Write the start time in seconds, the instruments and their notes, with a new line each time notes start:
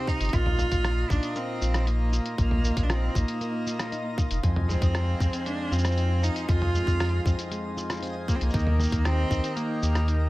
Already playing: nylon-string guitar C3 C4 D#4, synth texture F4 F5, harmonium G4 D#5 C6
0.07 cello D#4, nylon-string guitar G4, kick, shaker
0.20 sub bass G1, closed hi-hat, shaker
0.25 closed hi-hat
0.29 harmonium A#5, closed hi-hat
0.33 sub bass A#1, nylon-string guitar A#2, synth texture D#4 D#5, harmonium F4, cello F4, kick, closed hi-hat, shaker
0.46 mid tom
0.59 nylon-string guitar A#3, mid tom, shaker
0.72 sub bass A#1, kick, closed hi-hat, shaker
0.84 nylon-string guitar F4, cross-stick, closed hi-hat, shaker
1.10 sub bass A#1, cello D4, nylon-string guitar D#4, kick, shaker
1.23 closed hi-hat, shaker
1.36 nylon-string guitar A#3, cello C4, closed hi-hat, shaker
1.61 sub bass A#1, nylon-string guitar F4, shaker
1.74 cross-stick, closed hi-hat, shaker
1.87 cello A#3, nylon-string guitar D#4, closed hi-hat, shaker
2.13 nylon-string guitar F4, shaker
2.26 closed hi-hat
2.38 sub bass A#1, nylon-string guitar A#2, cello A#3, kick, closed hi-hat, shaker
2.51 mid tom
2.64 nylon-string guitar A#3, shaker
2.77 sub bass A#1, kick, closed hi-hat, shaker
2.83 cello D4
2.90 cello C4, nylon-string guitar F4, cross-stick, closed hi-hat, shaker
3.15 sub bass A#1, cello A#3, nylon-string guitar D#4, kick, shaker
3.28 closed hi-hat
3.41 nylon-string guitar A#3, closed hi-hat, shaker
3.67 nylon-string guitar F4, shaker
3.79 cross-stick, closed hi-hat, shaker
3.92 nylon-string guitar D#4, closed hi-hat, shaker
4.18 nylon-string guitar F4, kick, shaker
4.31 sub bass F1, closed hi-hat, shaker
4.43 nylon-string guitar F2, sub bass F2, harmonium C5 G#5, kick, closed hi-hat, shaker
4.56 mid tom
4.69 nylon-string guitar G#3, cello C4, mid tom, shaker
4.82 sub bass F2, kick, closed hi-hat, shaker
4.95 nylon-string guitar F4, cross-stick, closed hi-hat, shaker
5.20 sub bass F2, nylon-string guitar C4, kick, shaker
5.33 closed hi-hat, shaker
5.46 nylon-string guitar G#3, cello D4, closed hi-hat, shaker
5.71 sub bass F2, cello C4, nylon-string guitar F4, shaker
5.79 shaker
5.85 cross-stick, closed hi-hat, shaker
5.91 shaker
5.97 nylon-string guitar C4, closed hi-hat, shaker
6.23 cello D#4, nylon-string guitar F4, shaker
6.36 closed hi-hat, shaker
6.49 sub bass F2, nylon-string guitar F2, cello F4, kick, closed hi-hat, shaker
6.62 mid tom
6.74 nylon-string guitar G#3, shaker
6.87 sub bass F2, kick, shaker
7.00 nylon-string guitar F4, cross-stick, closed hi-hat, shaker
7.05 closed hi-hat
7.09 closed hi-hat
7.26 sub bass F2, nylon-string guitar C4, kick, shaker
7.39 closed hi-hat, shaker
7.51 nylon-string guitar G#3, closed hi-hat, shaker
7.77 nylon-string guitar F4, shaker
7.90 cross-stick, closed hi-hat, shaker
7.93 shaker
7.96 shaker
8.00 nylon-string guitar C4, closed hi-hat, shaker
8.03 shaker
8.06 shaker
8.28 cello A#3, nylon-string guitar F4, kick, shaker
8.35 cello C4
8.41 sub bass C2, cello A#3, closed hi-hat, shaker
8.50 sub bass D#2, nylon-string guitar D#3, harmonium D#4 A#4 G5, kick, closed hi-hat, shaker
8.54 shaker
8.58 shaker
8.67 mid tom
8.79 nylon-string guitar A#3, mid tom, shaker
8.83 shaker
8.86 shaker
8.89 sub bass D#2, kick, closed hi-hat, shaker
8.93 shaker
9.04 cello C4, nylon-string guitar G4, cross-stick, closed hi-hat, shaker
9.31 sub bass D#2, nylon-string guitar D#4, kick, shaker
9.44 closed hi-hat, shaker
9.56 cello A#3, nylon-string guitar A#3, closed hi-hat, shaker
9.82 sub bass D#2, nylon-string guitar G4, shaker
9.95 cross-stick, closed hi-hat, shaker
10.08 nylon-string guitar D#4, closed hi-hat, shaker